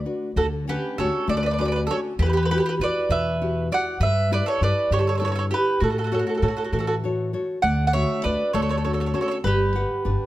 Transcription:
0.05 D4 F#4 B4
0.36 D2 D3 F#4 A4
0.68 C#4 D4 G4 B4 F#5
0.98 D2 C#4 D4 F#4 A4 C#5
1.27 D2 A3 A4 D5
1.37 B4 D5
1.43 B4 D5
1.51 B4 D5
1.58 C#4 D4 F#4 B4 D5
1.65 B4 D5
1.72 B4
1.76 D5
1.87 C#4 D4 F#4 A4
1.91 C#5
2.19 E2 E3 G4 B4
2.26 G4 B4
2.33 G4 B4
2.43 G4 B4
2.51 E4 F#4 G4 B4
2.58 G4 B4
2.66 G4 B4
2.80 E2 E4 F#4 G4 B4 D5
3.09 E2 B2 B4 E5
3.41 E4 F#4 G4
3.72 E4 F#4 G4 D5 F#5
4.00 G2 G3 B4 E5
4.31 E4 G4 B4 D5
4.46 A4 C#5
4.61 G2 E4 G4 B4 D5
4.91 G2 D3 G4 C#5
4.99 A4 C#5
5.07 A4 C#5
5.15 A4 C#5
5.20 E4 G4 A4 B4
5.25 A4 C#5
5.32 A4 C#5
5.39 C#5
5.51 E4 G4 B4
5.80 A2 A3 F#4 A4
5.90 F#4 A4
5.98 F#4 A4
6.04 F#4 A4
6.12 F#4 A4 C#5
6.19 F#4 A4
6.27 F#4 A4
6.35 F#4 A4
6.42 A2 F#4 A4 C#5
6.48 F#4 A4
6.57 F#4 A4
6.64 F#4 A4
6.72 A2 E3 F#4 A4
6.79 F#4 A4
6.87 F#4 A4
7.04 F#4 A4 C#5
7.33 F#4 A4 C#5
7.62 D2 D3 D5 F#5
7.87 D5 F#5
7.93 A3 D4 F#4 C#5 E5
8.24 D2 D4 F#4 B4 D5
8.53 D2 A3 A4 C#5
8.62 A4 C#5
8.69 A4 C#5
8.77 A4 C#5
8.84 C#4 D4 F#4 A4 C#5
8.93 A4 C#5
9.00 A4 C#5
9.06 A4 C#5
9.14 C#4 D4 F#4 A4 C#5
9.21 A4 C#5
9.28 A4 C#5
9.44 G1 G3 G4 B4
9.75 G4 B4 F#5
10.05 G1 D4 G4 B4

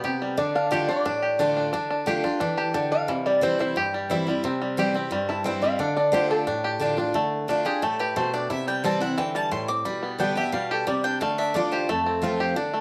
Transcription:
Already playing: B3 D4 F5
0.04 C3 G4
0.22 G3
0.37 D3 D4 D5
0.55 D4 F5
0.71 D3 A3 D4 F4 G4 D5
0.88 D4 F4 D5
1.05 A2 D4
1.22 G4
1.39 D3 A3 D4 F4
1.57 D4
1.73 D3 D4
1.90 D4
2.06 D3 A3 D4 F4 G4
2.24 D4 F4
2.40 E3 D4
2.57 G4 A5
2.74 D3 D4 G5
2.92 D4 F5
3.08 C3 E3
3.26 G3 D5
3.41 E3 G3 C4 E4 C5
3.59 C4 E4 C5
3.76 G2 G4
3.94 G3
4.10 E3 G3 C4 E4
4.27 G3 C4 E4
4.44 C3 C4
4.62 G3
4.77 E3 G3 C4 E4 G4
4.94 C4 E4
5.11 G2 G3
5.29 E4 A5
5.44 E3 G3 C4 E4 G5
5.62 G3 C4 E4 F5
5.79 D3 D4
5.96 D4 D5
6.12 D3 A3 D4 F4 G4 C5
6.31 D4 A4
6.47 A2 D4
6.64 G4
6.80 D3 A3 D4 F4
6.97 D4 F4
7.14 D3 A3
7.48 D3 A3 D4 F4
7.65 D4 F4 G4 G#4
7.82 A2 A3 A4
7.99 G4 B4
8.16 B2 A3 C5
8.34 D4 D5
8.50 C3 E4 E5
8.67 G3 G5
8.84 E3 G3 C4 E4 A5
9.00 C4 E4 F#5
9.18 D3 E3 G5
9.35 G3 A5
9.51 A2 E4 C6
9.68 C4 D6
9.85 B2 G3 B5
10.03 B3
10.18 D3 G3 B3 D4 G4 G5
10.35 B3 G4 E5
10.52 B2 G3 F5
10.71 G4 A4
10.87 C3 G3 D5
11.04 D4 G5
11.21 D3 A3 F5
11.38 D4 E5
11.54 D3 A3 D4 F4 D5
11.72 G4 C5
11.89 F2 A3 A4
12.06 C4
12.22 F3 A3 C4 F4
12.40 G4
12.56 D3 D4
12.73 A3

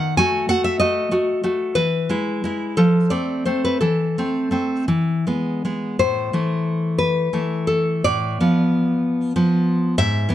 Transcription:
Already playing: D#3 F#5
0.17 A3 F#4 G#5
0.49 A3 F#4 F#5
0.64 E5
0.80 A3 F#4 D#5
1.11 A3 F#4
1.44 A3 F#4
1.75 E3 B4
2.09 G#3 E4
2.44 G#3 E4
2.77 F3 A4
3.10 A3 C4 D5
3.45 A3 C4 C5
3.65 B4
3.81 E3 A4
4.18 A3 C4
4.51 A3 C4
4.88 E3
5.27 G#3 B3
5.65 G#3 B3
5.99 A2 C5
6.33 E3 A3
6.98 B4
7.33 E3 A3
7.67 A4
8.04 A2 D5
8.40 F3 B3
9.36 F3 B3
9.98 G#2 E5
10.29 E3 B3

